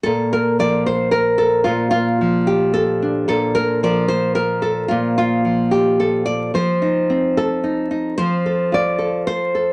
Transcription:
0.03 A#2 A4
0.33 A#4
0.59 F3 D5
0.86 C5
1.11 A#4
1.38 A4
1.64 A#2 F4
1.91 F4
2.21 F3
2.47 G4
2.74 A4
3.02 D4
3.28 A#2 A4
3.55 A#4
3.83 F3 D5
4.08 C5
4.35 A#4
4.62 A4
4.88 A#2 F4
5.18 F4
5.45 F3
5.71 G4
6.00 A4
6.26 D5
6.54 F3 C5
6.82 D#4
7.10 C4
7.37 A4
7.64 D#4
7.91 D#4
8.18 F3 C5
8.46 A4
8.72 F4 D5
8.99 A4
9.27 C5
9.55 A4

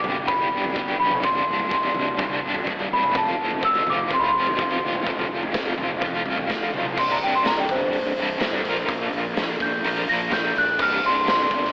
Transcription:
Already playing: G2 D3 D6
0.04 G1 G3 B3 D4 G4, floor tom, mid tom
0.28 G1 G3 B3 D4 G4 B5, kick, floor tom, mid tom
0.52 G1 G3 B3 D4 G4
0.64 floor tom
0.75 G1 G2 D3 G3 B3 D4 G4, kick
0.88 floor tom
0.99 B1 G3 B3 D4 G4 B5
1.11 mid tom
1.23 C1 C2 G2 C3 G3 D4 C6, kick, floor tom
1.35 floor tom
1.48 C1 C3 G3 D4
1.59 floor tom
1.71 C1 C2 G2 C3 G3 D4 C6, kick
1.83 floor tom
1.94 C1 G3 D4, floor tom, mid tom
1.99 C3
2.19 C2 G2 C3 G3, kick, floor tom, mid tom
2.23 D4
2.44 G1 C3 G3 D4
2.54 floor tom
2.67 C1 C2 G2 C3 G3, kick
2.71 D4
2.79 floor tom
2.92 C1 C3 G3 D4 B5
3.03 mid tom
3.15 F1 F2 C3 F3 A3 C4 F4 A5, kick, floor tom
3.27 floor tom
3.39 F1 F3 A3 C4 F4
3.51 floor tom
3.63 F1 F2 C3 F3 A3 C4 F4 E6, kick
3.75 floor tom
3.87 F1 A3 C4 F4 D6, floor tom, mid tom
3.91 F3
4.10 F1 F3 A3 C4 F4 C6, kick, floor tom, mid tom
4.20 B5
4.28 C6
4.36 F1 F3 A3 C4 F4
4.47 floor tom
4.59 F1 F2 C3 F3 A3 C4 F4, kick
4.71 floor tom
4.84 C1 F3 A3 C4 F4
4.94 mid tom
5.06 F1 F2 C3 F3 A3 C4 F4, kick, floor tom
5.19 floor tom
5.30 F1 F3 A3 C4 F4
5.43 floor tom
5.54 F1 F2 C3 F3 A3 C4 F4, kick, snare
5.66 floor tom
5.78 F1 F3 A3 C4 F4, floor tom, mid tom
6.01 F2 F3 A3 C4, kick, floor tom, mid tom
6.05 F4
6.25 C2 F3 A3 C4 F4, floor tom
6.37 floor tom
6.49 F1 F2 C3 F3 A3 C4 F4, kick, snare
6.73 B1 F3 A3 C4 F4, mid tom
6.86 mid tom
6.97 C1 C2 G2 C3 G3 D4 C6, kick, crash
7.11 A#5
7.21 C1 G5, open hi-hat
7.35 C6
7.45 C1 A#5, snare, open hi-hat
7.60 G5
7.69 G1 C5, kick, open hi-hat
7.93 C1, open hi-hat
8.16 C1 G2 C3 G3 D4, open hi-hat
8.21 C2
8.41 G1 C2 G2 C3 G3 D4, kick, snare, open hi-hat
8.65 A#1 A#2 F3 A#3 D4 F4 A#4, open hi-hat
8.88 A#1, kick, open hi-hat
9.13 A#1, open hi-hat
9.37 A#1, snare, open hi-hat
9.60 A#1 G6, kick, open hi-hat
9.84 A#1 A#2 F3 A#3 D4 F4 A#4, open hi-hat
10.08 A#1 A#2 F3 A#3 D4 F4 A#4 A#6, open hi-hat
10.32 A#1 G6, kick, snare, open hi-hat
10.55 A#1 F#6, open hi-hat
10.79 C1 C2 G2 C3 G3 F6, kick, crash
10.84 D4
11.04 C1 C6, open hi-hat
11.28 C1 C6, snare, open hi-hat
11.51 G1, kick, open hi-hat
11.64 snare

